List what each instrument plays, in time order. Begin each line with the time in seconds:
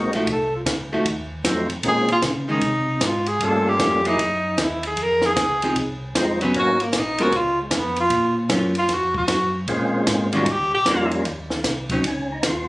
Already playing: tonewheel organ A#1 G#3 A#3 C4 D#4 F#4
0.13 hollow-body jazz guitar F3 A3 D#4 F#4, ride
0.27 tonewheel organ C2, kick, ride
0.32 tenor saxophone A4
0.56 tenor saxophone F4
0.66 tonewheel organ C#2, kick, snare, hi-hat pedal, ride
0.91 tonewheel organ C#2, hollow-body jazz guitar F3 A3 D#4 F#4
1.05 tonewheel organ D#2, kick, ride
1.44 tonewheel organ F2 F#3 A3 C4 D#4 F4, kick, snare, hi-hat pedal, ride
1.69 tonewheel organ F2, ride
1.83 tonewheel organ A#2 D#3 G#3 C4 C#4 F4, kick, ride
1.88 tenor saxophone G#4
2.08 tenor saxophone F4, ride
2.22 tonewheel organ C#3, kick, snare, hi-hat pedal, ride
2.48 hollow-body jazz guitar D#3 G#3 C#4, tenor saxophone D#4
2.61 tonewheel organ C3, kick, ride
3.01 tonewheel organ G#2, kick, snare, hi-hat pedal, ride
3.06 tenor saxophone F4
3.26 tenor saxophone G#4, ride
3.40 tonewheel organ G2 G3 A3 A#3 C#4 F4, kick, ride
3.44 tenor saxophone A4
3.69 tenor saxophone G4
3.79 tonewheel organ F2, kick, snare, hi-hat pedal, ride
4.05 hollow-body jazz guitar F#3 A#3 E4 G#4, tenor saxophone D#4, ride
4.19 tonewheel organ F#2, kick, ride
4.58 tonewheel organ D#2, kick, snare, hi-hat pedal, ride
4.63 tenor saxophone E4
4.83 tenor saxophone G#4, ride
4.97 tonewheel organ F2, kick, ride
5.03 tenor saxophone A#4
5.22 snare
5.26 tenor saxophone G#4
5.36 tonewheel organ C#2, kick, snare, hi-hat pedal, ride
5.62 hollow-body jazz guitar F3 C4 D#4 G#4, ride
5.75 tonewheel organ C2, kick, ride
6.15 tonewheel organ F1 F3 G#3 C4 D#4 F4, kick, snare, hi-hat pedal, ride
6.41 hollow-body jazz guitar F#3 B3 C#4, ride
6.54 tonewheel organ G#1 F#3 A#3 B3 C#4 D#4, kick, ride
6.59 tenor saxophone F#4
6.80 tenor saxophone A#3, ride
6.93 tonewheel organ A#1, kick, snare, hi-hat pedal, ride
6.98 tenor saxophone D#4
7.18 tonewheel organ F3 G#3 A#3 B3 C#4, hollow-body jazz guitar B3 F4 A#4, ride
7.23 tenor saxophone F#4
7.32 tonewheel organ C#2, kick, ride
7.37 tenor saxophone F4
7.62 tenor saxophone G#3
7.71 tonewheel organ F2, kick, snare, hi-hat pedal, ride
7.77 tenor saxophone B3
7.96 tenor saxophone F4, ride
8.10 tonewheel organ A#2, kick, ride
8.49 tonewheel organ F#2, hollow-body jazz guitar F#3 A#3 C#4 F4, kick, snare, hi-hat pedal, ride
8.75 tenor saxophone F4, ride
8.89 tonewheel organ F2, kick, snare, ride
8.94 tenor saxophone F#4
9.14 tenor saxophone F#4, kick
9.28 tonewheel organ F#2, kick, snare, hi-hat pedal, ride
9.67 tonewheel organ A#2 G#3 A#3 C4 C#4 F4, kick, ride
10.06 tonewheel organ G#2, kick, snare, hi-hat pedal, ride
10.32 hollow-body jazz guitar D#3 G3 C#4 F4, tonewheel organ G3 A#3 C#4 D#4 F4, tenor saxophone F#4, ride
10.46 tonewheel organ D#2, kick, ride
10.52 tenor saxophone G4
10.59 tonewheel organ C#2
10.72 tonewheel organ A#1, tenor saxophone G4
10.85 tonewheel organ F2 G3 A#3 C#4 D#4 F4, kick, snare, hi-hat pedal, ride
11.11 ride
11.25 tonewheel organ D#2, kick, ride
11.50 snare
11.64 tonewheel organ C2, kick, snare, hi-hat pedal, ride
11.89 hollow-body jazz guitar F#3 C#4 D#4, tonewheel organ C4, kick, ride
12.03 tonewheel organ C#2, kick, ride
12.07 tonewheel organ C#4
12.32 tonewheel organ D#4
12.43 tonewheel organ D#2 F4, kick, snare, hi-hat pedal, ride